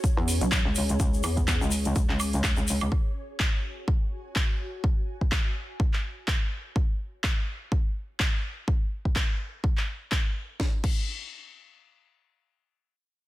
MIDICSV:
0, 0, Header, 1, 4, 480
1, 0, Start_track
1, 0, Tempo, 480000
1, 997, Time_signature, 4, 2, 24, 8
1, 13272, End_track
2, 0, Start_track
2, 0, Title_t, "Ambient pad"
2, 0, Program_c, 0, 92
2, 0, Note_on_c, 0, 61, 75
2, 0, Note_on_c, 0, 66, 89
2, 0, Note_on_c, 0, 68, 83
2, 0, Note_on_c, 0, 73, 77
2, 0, Note_on_c, 0, 80, 82
2, 525, Note_off_c, 0, 66, 0
2, 626, Note_off_c, 0, 80, 0
2, 2918, Note_on_c, 0, 66, 88
2, 3150, Note_on_c, 0, 80, 76
2, 3800, Note_off_c, 0, 61, 0
2, 3867, Note_off_c, 0, 68, 0
2, 6757, Note_off_c, 0, 73, 0
2, 6758, Note_off_c, 0, 66, 0
2, 6758, Note_off_c, 0, 80, 0
2, 13272, End_track
3, 0, Start_track
3, 0, Title_t, "Wobble bass"
3, 0, Program_c, 1, 39
3, 173, Note_on_c, 1, 40, 100
3, 391, Note_off_c, 1, 40, 0
3, 414, Note_on_c, 1, 35, 98
3, 632, Note_off_c, 1, 35, 0
3, 653, Note_on_c, 1, 37, 96
3, 981, Note_off_c, 1, 37, 0
3, 998, Note_on_c, 1, 37, 100
3, 1221, Note_off_c, 1, 37, 0
3, 1237, Note_on_c, 1, 40, 96
3, 1591, Note_off_c, 1, 40, 0
3, 1613, Note_on_c, 1, 37, 91
3, 1941, Note_off_c, 1, 37, 0
3, 1957, Note_on_c, 1, 37, 96
3, 2071, Note_off_c, 1, 37, 0
3, 2093, Note_on_c, 1, 37, 94
3, 2421, Note_off_c, 1, 37, 0
3, 2438, Note_on_c, 1, 37, 98
3, 2551, Note_off_c, 1, 37, 0
3, 2573, Note_on_c, 1, 37, 93
3, 2901, Note_off_c, 1, 37, 0
3, 13272, End_track
4, 0, Start_track
4, 0, Title_t, "Drums"
4, 38, Note_on_c, 9, 36, 126
4, 38, Note_on_c, 9, 42, 62
4, 43, Note_on_c, 9, 82, 51
4, 138, Note_off_c, 9, 36, 0
4, 138, Note_off_c, 9, 42, 0
4, 143, Note_off_c, 9, 82, 0
4, 278, Note_on_c, 9, 46, 108
4, 287, Note_on_c, 9, 82, 94
4, 378, Note_off_c, 9, 46, 0
4, 387, Note_off_c, 9, 82, 0
4, 413, Note_on_c, 9, 42, 52
4, 418, Note_on_c, 9, 82, 38
4, 513, Note_off_c, 9, 42, 0
4, 517, Note_on_c, 9, 36, 122
4, 518, Note_off_c, 9, 82, 0
4, 518, Note_on_c, 9, 39, 119
4, 518, Note_on_c, 9, 42, 62
4, 521, Note_on_c, 9, 82, 52
4, 617, Note_off_c, 9, 36, 0
4, 618, Note_off_c, 9, 39, 0
4, 618, Note_off_c, 9, 42, 0
4, 621, Note_off_c, 9, 82, 0
4, 754, Note_on_c, 9, 82, 86
4, 758, Note_on_c, 9, 46, 107
4, 854, Note_off_c, 9, 82, 0
4, 858, Note_off_c, 9, 46, 0
4, 892, Note_on_c, 9, 82, 41
4, 893, Note_on_c, 9, 42, 51
4, 992, Note_off_c, 9, 82, 0
4, 993, Note_off_c, 9, 42, 0
4, 997, Note_on_c, 9, 36, 122
4, 998, Note_on_c, 9, 42, 62
4, 998, Note_on_c, 9, 82, 55
4, 1097, Note_off_c, 9, 36, 0
4, 1098, Note_off_c, 9, 42, 0
4, 1098, Note_off_c, 9, 82, 0
4, 1138, Note_on_c, 9, 82, 40
4, 1235, Note_off_c, 9, 82, 0
4, 1235, Note_on_c, 9, 82, 93
4, 1238, Note_on_c, 9, 46, 111
4, 1238, Note_on_c, 9, 76, 78
4, 1335, Note_off_c, 9, 82, 0
4, 1338, Note_off_c, 9, 46, 0
4, 1338, Note_off_c, 9, 76, 0
4, 1368, Note_on_c, 9, 82, 38
4, 1373, Note_on_c, 9, 36, 63
4, 1373, Note_on_c, 9, 42, 50
4, 1468, Note_off_c, 9, 82, 0
4, 1473, Note_off_c, 9, 36, 0
4, 1473, Note_off_c, 9, 42, 0
4, 1478, Note_on_c, 9, 36, 119
4, 1478, Note_on_c, 9, 39, 118
4, 1478, Note_on_c, 9, 42, 62
4, 1479, Note_on_c, 9, 82, 53
4, 1578, Note_off_c, 9, 36, 0
4, 1578, Note_off_c, 9, 39, 0
4, 1578, Note_off_c, 9, 42, 0
4, 1579, Note_off_c, 9, 82, 0
4, 1615, Note_on_c, 9, 82, 39
4, 1712, Note_off_c, 9, 82, 0
4, 1712, Note_on_c, 9, 82, 98
4, 1718, Note_on_c, 9, 46, 107
4, 1812, Note_off_c, 9, 82, 0
4, 1818, Note_off_c, 9, 46, 0
4, 1843, Note_on_c, 9, 82, 40
4, 1853, Note_on_c, 9, 42, 49
4, 1943, Note_off_c, 9, 82, 0
4, 1953, Note_off_c, 9, 42, 0
4, 1956, Note_on_c, 9, 82, 52
4, 1957, Note_on_c, 9, 36, 124
4, 1958, Note_on_c, 9, 42, 62
4, 2056, Note_off_c, 9, 82, 0
4, 2057, Note_off_c, 9, 36, 0
4, 2058, Note_off_c, 9, 42, 0
4, 2094, Note_on_c, 9, 39, 35
4, 2194, Note_off_c, 9, 39, 0
4, 2197, Note_on_c, 9, 46, 108
4, 2197, Note_on_c, 9, 76, 73
4, 2201, Note_on_c, 9, 82, 103
4, 2297, Note_off_c, 9, 46, 0
4, 2297, Note_off_c, 9, 76, 0
4, 2301, Note_off_c, 9, 82, 0
4, 2333, Note_on_c, 9, 42, 48
4, 2337, Note_on_c, 9, 82, 39
4, 2433, Note_off_c, 9, 42, 0
4, 2437, Note_off_c, 9, 82, 0
4, 2438, Note_on_c, 9, 36, 124
4, 2438, Note_on_c, 9, 39, 116
4, 2438, Note_on_c, 9, 42, 61
4, 2441, Note_on_c, 9, 82, 50
4, 2538, Note_off_c, 9, 36, 0
4, 2538, Note_off_c, 9, 39, 0
4, 2538, Note_off_c, 9, 42, 0
4, 2541, Note_off_c, 9, 82, 0
4, 2567, Note_on_c, 9, 82, 40
4, 2667, Note_off_c, 9, 82, 0
4, 2678, Note_on_c, 9, 46, 108
4, 2678, Note_on_c, 9, 82, 97
4, 2778, Note_off_c, 9, 46, 0
4, 2778, Note_off_c, 9, 82, 0
4, 2802, Note_on_c, 9, 82, 39
4, 2813, Note_on_c, 9, 42, 49
4, 2813, Note_on_c, 9, 76, 79
4, 2902, Note_off_c, 9, 82, 0
4, 2913, Note_off_c, 9, 42, 0
4, 2913, Note_off_c, 9, 76, 0
4, 2918, Note_on_c, 9, 36, 114
4, 3018, Note_off_c, 9, 36, 0
4, 3398, Note_on_c, 9, 36, 115
4, 3398, Note_on_c, 9, 39, 110
4, 3498, Note_off_c, 9, 36, 0
4, 3498, Note_off_c, 9, 39, 0
4, 3878, Note_on_c, 9, 36, 120
4, 3978, Note_off_c, 9, 36, 0
4, 4358, Note_on_c, 9, 36, 115
4, 4358, Note_on_c, 9, 39, 107
4, 4458, Note_off_c, 9, 36, 0
4, 4458, Note_off_c, 9, 39, 0
4, 4838, Note_on_c, 9, 36, 113
4, 4938, Note_off_c, 9, 36, 0
4, 5213, Note_on_c, 9, 36, 58
4, 5313, Note_off_c, 9, 36, 0
4, 5318, Note_on_c, 9, 36, 113
4, 5319, Note_on_c, 9, 39, 112
4, 5418, Note_off_c, 9, 36, 0
4, 5419, Note_off_c, 9, 39, 0
4, 5798, Note_on_c, 9, 36, 112
4, 5898, Note_off_c, 9, 36, 0
4, 5934, Note_on_c, 9, 39, 33
4, 6034, Note_off_c, 9, 39, 0
4, 6278, Note_on_c, 9, 36, 115
4, 6279, Note_on_c, 9, 39, 110
4, 6378, Note_off_c, 9, 36, 0
4, 6379, Note_off_c, 9, 39, 0
4, 6758, Note_on_c, 9, 36, 107
4, 6858, Note_off_c, 9, 36, 0
4, 7238, Note_on_c, 9, 36, 112
4, 7239, Note_on_c, 9, 39, 115
4, 7338, Note_off_c, 9, 36, 0
4, 7339, Note_off_c, 9, 39, 0
4, 7718, Note_on_c, 9, 36, 109
4, 7818, Note_off_c, 9, 36, 0
4, 8198, Note_on_c, 9, 36, 109
4, 8199, Note_on_c, 9, 39, 110
4, 8298, Note_off_c, 9, 36, 0
4, 8299, Note_off_c, 9, 39, 0
4, 8678, Note_on_c, 9, 36, 109
4, 8778, Note_off_c, 9, 36, 0
4, 9053, Note_on_c, 9, 36, 57
4, 9153, Note_off_c, 9, 36, 0
4, 9158, Note_on_c, 9, 36, 111
4, 9158, Note_on_c, 9, 39, 117
4, 9258, Note_off_c, 9, 36, 0
4, 9258, Note_off_c, 9, 39, 0
4, 9638, Note_on_c, 9, 36, 113
4, 9738, Note_off_c, 9, 36, 0
4, 9774, Note_on_c, 9, 39, 35
4, 9874, Note_off_c, 9, 39, 0
4, 10118, Note_on_c, 9, 36, 112
4, 10118, Note_on_c, 9, 39, 111
4, 10218, Note_off_c, 9, 36, 0
4, 10218, Note_off_c, 9, 39, 0
4, 10598, Note_on_c, 9, 36, 110
4, 10598, Note_on_c, 9, 38, 78
4, 10698, Note_off_c, 9, 36, 0
4, 10698, Note_off_c, 9, 38, 0
4, 10837, Note_on_c, 9, 36, 107
4, 10838, Note_on_c, 9, 49, 84
4, 10937, Note_off_c, 9, 36, 0
4, 10938, Note_off_c, 9, 49, 0
4, 13272, End_track
0, 0, End_of_file